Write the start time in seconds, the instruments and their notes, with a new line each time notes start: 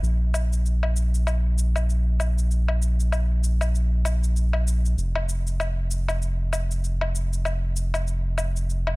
0.02 analog synth bass A#1, shaker
0.34 low woodblock, shaker
0.53 shaker
0.66 shaker
0.83 low woodblock
0.96 shaker
1.15 shaker
1.27 low woodblock, shaker
1.58 shaker
1.76 low woodblock, shaker
1.90 shaker
2.20 low woodblock, shaker
2.38 shaker
2.51 shaker
2.68 low woodblock
2.82 shaker
3.00 shaker
3.12 low woodblock, shaker
3.44 shaker
3.61 low woodblock, shaker
3.75 shaker
4.05 low woodblock, shaker
4.24 shaker
4.36 shaker
4.53 low woodblock
4.68 shaker
4.86 shaker
4.98 analog synth bass F1, shaker
5.16 low woodblock
5.29 shaker
5.47 shaker
5.60 low woodblock, shaker
5.91 shaker
6.08 low woodblock, shaker
6.22 shaker
6.53 low woodblock, shaker
6.71 shaker
6.84 shaker
7.01 low woodblock
7.15 shaker
7.33 shaker
7.45 low woodblock, shaker
7.76 shaker
7.94 low woodblock, shaker
8.07 shaker
8.38 low woodblock, shaker
8.56 shaker
8.70 shaker
8.87 low woodblock